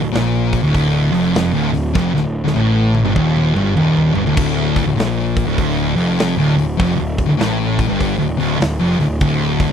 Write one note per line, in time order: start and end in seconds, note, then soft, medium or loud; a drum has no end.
0.02 0.13 D1 medium
0.02 0.12 D2 medium
0.13 0.60 A#1 loud
0.13 0.62 A#2 loud
0.13 snare loud
0.13 open hi-hat medium
0.53 kick medium
0.53 open hi-hat medium
0.63 1.09 D1 loud
0.63 1.11 D2 loud
0.74 kick medium
0.74 open hi-hat medium
1.11 1.50 F1 loud
1.11 1.52 F2 loud
1.11 open hi-hat medium
1.35 snare loud
1.35 open hi-hat medium
1.53 1.71 D1 loud
1.53 1.71 D2 loud
1.73 1.93 D1 medium
1.73 1.90 D2 medium
1.73 snare soft
1.73 open hi-hat medium
1.94 2.13 F1 loud
1.94 2.13 F2 loud
1.94 kick loud
1.94 snare medium
2.14 2.43 D1 medium
2.14 2.40 D2 medium
2.14 snare medium
2.44 2.55 D1 medium
2.44 2.53 D2 medium
2.44 snare medium
2.54 3.02 A1 loud
2.54 3.04 A2 loud
2.54 high tom medium
2.95 high tom medium
3.05 3.15 G1 medium
3.05 3.14 G2 loud
3.05 mid tom medium
3.15 3.52 D#1 medium
3.15 3.53 D#2 loud
3.15 kick medium
3.36 mid tom medium
3.55 3.75 G1 medium
3.55 3.76 G2 loud
3.55 mid tom loud
3.76 4.13 D#1 medium
3.76 4.14 D#2 loud
3.76 mid tom loud
3.97 floor tom medium
4.14 4.25 G1 medium
4.14 4.25 G2 loud
4.14 floor tom loud
4.25 4.36 D1 loud
4.25 4.35 D2 loud
4.25 floor tom loud
4.36 4.83 D1 medium
4.36 4.85 D2 loud
4.36 kick loud
4.36 crash loud
4.76 kick medium
4.76 open hi-hat medium
4.86 4.96 D1 medium
4.86 4.95 D2 medium
4.96 5.43 A#1 loud
4.96 5.45 A#2 loud
4.96 open hi-hat medium
5.00 snare loud
5.37 kick medium
5.37 open hi-hat medium
5.46 5.93 D1 loud
5.46 5.95 D2 loud
5.58 kick medium
5.58 open hi-hat medium
5.96 6.35 F1 medium
5.96 6.36 F2 loud
5.96 open hi-hat medium
6.19 snare loud
6.19 open hi-hat medium
6.37 6.56 D1 loud
6.37 6.55 D2 loud
6.57 6.78 D1 medium
6.57 6.74 D2 medium
6.57 open hi-hat medium
6.78 6.97 F1 loud
6.78 6.95 F2 loud
6.78 kick loud
6.78 open hi-hat medium
6.96 7.26 D1 medium
6.96 7.23 D2 medium
7.18 kick medium
7.18 open hi-hat medium
7.26 7.39 D1 medium
7.26 7.37 D2 medium
7.37 7.86 A1 loud
7.37 7.87 A2 loud
7.37 snare loud
7.37 open hi-hat medium
7.79 kick medium
7.79 open hi-hat medium
7.88 8.18 G1 loud
7.88 8.17 G2 loud
8.01 kick medium
8.01 open hi-hat medium
8.18 8.38 D1 medium
8.18 8.36 D2 medium
8.37 8.58 D1 loud
8.37 8.59 D2 loud
8.37 open hi-hat medium
8.59 8.78 D1 medium
8.59 8.79 D2 medium
8.59 snare loud
8.59 open hi-hat medium
8.79 8.97 F1 loud
8.79 8.98 F2 loud
8.98 9.19 D1 medium
8.98 9.17 D2 medium
8.98 snare soft
8.98 open hi-hat medium
9.20 9.67 D1 loud
9.20 9.70 D2 loud
9.20 kick loud
9.20 open hi-hat medium
9.42 snare soft
9.59 kick loud
9.59 open hi-hat medium
9.69 9.72 D1 medium